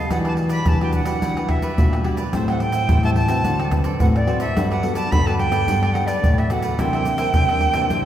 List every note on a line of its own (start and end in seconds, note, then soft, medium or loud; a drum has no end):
0.10 0.64 E3 medium
0.10 0.58 E3 medium
0.10 0.62 G3 soft
0.10 0.62 D4 medium
0.10 0.23 E4 soft
0.10 0.62 F#4 medium
0.10 0.24 G4 medium
0.10 0.24 B4 soft
0.10 0.23 D5 medium
0.10 0.18 F#5 medium
0.10 pandeiro medium
0.10 tamborim medium
0.10 shaker medium
0.10 surdo medium
0.24 0.36 G4 medium
0.24 0.37 B4 medium
0.24 0.37 D5 medium
0.24 0.33 A5 medium
0.24 pandeiro soft
0.24 tamborim medium
0.24 shaker soft
0.37 muted cavaquinho stroke soft
0.37 pandeiro medium
0.49 0.65 G4 medium
0.49 0.65 B4 medium
0.49 0.64 D5 medium
0.49 0.69 B5 medium
0.49 pandeiro medium
0.49 shaker medium
0.66 1.19 B2 medium
0.66 1.02 E3 medium
0.66 0.75 G3 medium
0.66 0.75 D4 medium
0.66 0.79 E4 soft
0.66 0.75 F#4 medium
0.66 0.80 G4 medium
0.66 0.80 B4 medium
0.66 0.80 D5 medium
0.66 0.81 A5 medium
0.66 pandeiro medium
0.66 tamborim medium
0.66 shaker medium
0.66 surdo medium
0.81 1.04 G3 medium
0.81 1.04 D4 medium
0.81 1.04 F#4 medium
0.81 1.06 G4 medium
0.81 1.06 B4 medium
0.81 1.04 D5 medium
0.81 0.94 G5 medium
0.81 pandeiro soft
0.81 tamborim medium
0.81 shaker soft
0.93 1.52 F#5 medium
0.93 pandeiro medium
0.93 shaker medium
1.05 1.19 E3 medium
1.05 1.44 G3 medium
1.05 1.44 D4 medium
1.05 1.44 F#4 medium
1.05 1.21 G4 medium
1.05 1.20 B4 medium
1.05 1.20 D5 medium
1.05 pandeiro medium
1.05 tamborim medium
1.05 shaker medium
1.22 1.75 E3 soft
1.22 1.70 E3 medium
1.22 1.35 E4 soft
1.22 1.35 G4 soft
1.22 1.36 B4 soft
1.22 1.36 D5 medium
1.22 pandeiro medium
1.22 shaker medium
1.22 surdo medium
1.37 1.49 G4 soft
1.37 1.49 B4 medium
1.37 1.49 D5 medium
1.37 pandeiro soft
1.37 tamborim medium
1.37 shaker soft
1.48 1.73 G3 soft
1.48 1.73 D4 soft
1.48 1.73 F#4 medium
1.48 2.06 E5 medium
1.48 muted cavaquinho stroke soft
1.48 pandeiro medium
1.48 tamborim medium
1.48 surdo medium
1.62 2.04 G4 medium
1.62 2.04 B4 medium
1.62 2.04 D5 medium
1.62 pandeiro medium
1.62 shaker medium
1.77 2.01 A#2 loud
1.77 2.31 B2 medium
1.77 2.01 G3 soft
1.77 2.01 D4 medium
1.77 2.01 F#4 medium
1.77 pandeiro medium
1.77 shaker medium
1.77 surdo loud
1.93 pandeiro soft
1.93 tamborim medium
1.93 shaker soft
2.04 2.21 G3 medium
2.04 2.22 D4 soft
2.04 2.18 E4 soft
2.04 2.22 F#4 medium
2.04 2.18 G4 soft
2.04 2.18 B4 soft
2.04 2.17 D5 soft
2.04 pandeiro medium
2.04 tamborim medium
2.17 2.33 G4 medium
2.17 2.32 B4 medium
2.17 2.32 D5 medium
2.17 pandeiro medium
2.17 shaker medium
2.33 2.86 A2 medium
2.33 2.81 A2 loud
2.33 2.69 G3 medium
2.33 2.69 C4 medium
2.33 2.70 E4 medium
2.33 2.47 A4 medium
2.33 2.47 C5 medium
2.33 2.48 E5 medium
2.33 2.48 G5 medium
2.33 pandeiro medium
2.33 tamborim medium
2.33 shaker medium
2.33 surdo medium
2.48 2.62 E5 medium
2.48 2.63 F#5 medium
2.48 2.61 G5 medium
2.48 pandeiro soft
2.48 tamborim medium
2.48 shaker soft
2.52 2.61 C5 medium
2.60 3.03 G5 loud
2.60 muted cavaquinho stroke soft
2.60 pandeiro medium
2.72 2.88 C5 medium
2.72 2.88 E5 medium
2.72 2.87 G5 medium
2.72 pandeiro medium
2.72 shaker medium
2.89 3.24 A2 medium
2.89 3.42 E3 medium
2.89 2.98 G3 medium
2.89 2.99 C4 medium
2.89 2.99 E4 medium
2.89 3.02 A4 soft
2.89 3.03 C5 soft
2.89 3.03 E5 medium
2.89 3.03 G5 medium
2.89 pandeiro medium
2.89 tamborim medium
2.89 shaker medium
2.89 surdo loud
3.03 3.27 G3 medium
3.03 3.27 C4 medium
3.03 3.27 E4 medium
3.03 3.30 C5 medium
3.03 3.29 E5 medium
3.03 3.28 G5 medium
3.03 3.10 A5 loud
3.03 pandeiro soft
3.03 tamborim medium
3.03 shaker soft
3.16 3.68 A5 loud
3.16 pandeiro medium
3.27 3.44 C3 medium
3.27 3.67 C4 medium
3.27 3.67 F#4 medium
3.27 3.67 B4 medium
3.27 3.44 C5 medium
3.27 3.43 E5 medium
3.27 3.43 G5 medium
3.27 pandeiro medium
3.27 tamborim medium
3.27 shaker medium
3.44 3.97 D3 medium
3.44 3.92 D3 medium
3.44 3.58 F#4 soft
3.44 3.58 A4 soft
3.44 3.58 C5 medium
3.44 3.58 D5 medium
3.44 pandeiro medium
3.44 shaker medium
3.44 surdo medium
3.60 3.71 A4 soft
3.60 3.72 C5 medium
3.60 3.72 D5 medium
3.60 pandeiro soft
3.60 tamborim medium
3.60 shaker soft
3.71 3.88 C4 medium
3.71 3.89 F#4 medium
3.71 3.89 B4 medium
3.71 muted cavaquinho stroke soft
3.71 pandeiro medium
3.71 tamborim medium
3.71 shaker medium
3.71 surdo medium
3.84 4.27 A4 medium
3.84 4.27 C5 medium
3.84 4.26 D5 medium
3.84 pandeiro medium
3.84 shaker medium
4.00 4.24 A2 loud
4.00 4.53 A2 medium
4.00 4.17 C4 soft
4.00 4.17 F#4 medium
4.00 4.17 B4 medium
4.00 4.07 F#5 medium
4.00 pandeiro medium
4.00 shaker medium
4.00 surdo loud
4.15 4.39 D5 medium
4.15 pandeiro soft
4.15 tamborim medium
4.15 shaker soft
4.27 4.44 C4 medium
4.27 4.40 F#4 soft
4.27 4.44 F#4 medium
4.27 4.41 A4 soft
4.27 4.45 B4 medium
4.27 4.40 C5 medium
4.27 4.39 D5 soft
4.27 pandeiro medium
4.27 tamborim medium
4.40 4.55 A4 medium
4.40 4.55 C5 medium
4.40 4.54 D5 medium
4.40 4.67 E5 medium
4.40 pandeiro medium
4.40 shaker medium
4.56 5.03 G2 loud
4.56 5.09 G3 medium
4.56 4.80 B3 medium
4.56 4.69 F#4 medium
4.56 4.80 F#4 medium
4.56 4.69 G4 medium
4.56 4.80 A4 medium
4.56 4.70 B4 medium
4.56 4.69 D5 medium
4.56 pandeiro medium
4.56 tamborim medium
4.56 shaker medium
4.56 surdo medium
4.70 4.83 G4 medium
4.70 4.83 B4 medium
4.70 4.83 D5 medium
4.70 4.94 F#5 medium
4.70 pandeiro soft
4.70 tamborim medium
4.70 shaker soft
4.83 5.07 B3 medium
4.83 5.07 F#4 medium
4.83 5.07 A4 medium
4.83 muted cavaquinho stroke soft
4.83 pandeiro medium
4.95 5.11 G4 medium
4.95 5.10 B4 medium
4.95 5.10 D5 medium
4.95 5.13 A5 loud
4.95 pandeiro medium
4.95 shaker medium
5.11 5.48 G2 medium
5.11 5.65 D3 medium
5.11 5.21 B3 medium
5.11 5.25 F#4 soft
5.11 5.21 F#4 medium
5.11 5.25 G4 medium
5.11 5.22 A4 medium
5.11 5.25 B4 medium
5.11 5.25 D5 medium
5.11 5.27 B5 loud
5.11 pandeiro medium
5.11 tamborim medium
5.11 shaker medium
5.11 surdo loud
5.26 5.49 B3 medium
5.26 5.50 F#4 medium
5.26 5.52 G4 soft
5.26 5.50 A4 medium
5.26 5.51 B4 medium
5.26 5.50 D5 medium
5.26 5.37 A5 medium
5.26 pandeiro soft
5.26 tamborim medium
5.26 shaker soft
5.37 5.94 G5 loud
5.37 pandeiro medium
5.51 5.64 G2 medium
5.51 5.90 B3 medium
5.51 5.66 G4 soft
5.51 5.90 A4 medium
5.51 5.66 B4 medium
5.51 5.65 D5 medium
5.51 pandeiro medium
5.51 tamborim medium
5.51 shaker medium
5.68 6.15 G2 medium
5.68 6.21 G3 medium
5.68 5.81 F#4 soft
5.68 5.81 G4 soft
5.68 5.81 B4 medium
5.68 5.82 D5 soft
5.68 pandeiro medium
5.68 shaker medium
5.68 surdo medium
5.83 5.94 G4 medium
5.83 5.95 B4 medium
5.83 5.95 D5 medium
5.83 pandeiro soft
5.83 tamborim medium
5.83 shaker soft
5.93 6.46 B3 medium
5.93 6.46 A4 medium
5.93 6.08 F#5 medium
5.93 muted cavaquinho stroke soft
5.93 pandeiro medium
5.93 tamborim medium
6.06 6.50 G4 medium
6.06 6.50 B4 medium
6.06 6.40 D5 medium
6.06 6.49 D5 medium
6.06 pandeiro medium
6.06 shaker medium
6.23 6.47 A2 loud
6.23 6.76 D3 soft
6.23 pandeiro medium
6.23 shaker medium
6.23 surdo loud
6.38 6.53 E5 medium
6.38 pandeiro soft
6.38 tamborim medium
6.38 shaker soft
6.50 6.74 B3 medium
6.50 6.64 F#4 soft
6.50 6.74 F#4 medium
6.50 6.64 G4 medium
6.50 6.74 A4 medium
6.50 6.63 B4 medium
6.50 6.62 D5 medium
6.50 6.81 F#5 medium
6.50 pandeiro medium
6.50 tamborim medium
6.50 shaker medium
6.63 6.78 G4 medium
6.63 6.78 B4 medium
6.63 6.77 D5 medium
6.63 pandeiro medium
6.63 shaker medium
6.79 7.26 C3 medium
6.79 7.32 C3 medium
6.79 7.02 E3 medium
6.79 7.03 A#3 medium
6.79 7.03 D4 medium
6.79 6.92 E4 medium
6.79 6.92 A#4 medium
6.79 6.93 C5 medium
6.79 6.93 E5 medium
6.79 8.05 G5 loud
6.79 pandeiro medium
6.79 tamborim medium
6.79 shaker medium
6.79 surdo medium
6.93 7.06 A#4 medium
6.93 7.06 C5 medium
6.93 7.06 E5 medium
6.93 pandeiro soft
6.93 tamborim medium
6.93 shaker soft
7.05 7.30 E3 medium
7.05 7.30 A#3 medium
7.05 7.30 D4 medium
7.05 muted cavaquinho stroke soft
7.05 pandeiro medium
7.05 shaker medium
7.18 7.33 A#4 medium
7.18 7.33 C5 medium
7.18 7.32 E5 medium
7.18 pandeiro medium
7.18 shaker medium
7.34 7.88 G2 medium
7.34 7.70 C3 medium
7.34 7.43 E3 medium
7.34 7.43 A#3 medium
7.34 7.44 D4 medium
7.34 7.48 E4 soft
7.34 7.48 A#4 soft
7.34 7.48 C5 soft
7.34 7.49 E5 medium
7.34 pandeiro medium
7.34 tamborim medium
7.34 shaker medium
7.34 surdo loud
7.49 7.73 E3 medium
7.49 7.73 A#3 medium
7.49 7.73 D4 medium
7.49 7.75 A#4 medium
7.49 7.74 C5 medium
7.49 7.73 E5 medium
7.49 pandeiro soft
7.49 tamborim medium
7.49 shaker soft
7.61 pandeiro medium
7.74 7.87 C3 medium
7.74 8.05 E3 medium
7.74 8.05 A#3 medium
7.74 8.05 D4 medium
7.74 7.89 A#4 medium
7.74 7.89 C5 medium
7.74 7.88 E5 medium
7.74 pandeiro medium
7.74 tamborim medium
7.74 shaker medium
7.90 8.05 C3 medium
7.90 8.03 E4 soft
7.90 8.04 A#4 soft
7.90 8.04 C5 soft
7.90 8.04 E5 medium
7.90 pandeiro medium
7.90 shaker medium
7.90 surdo medium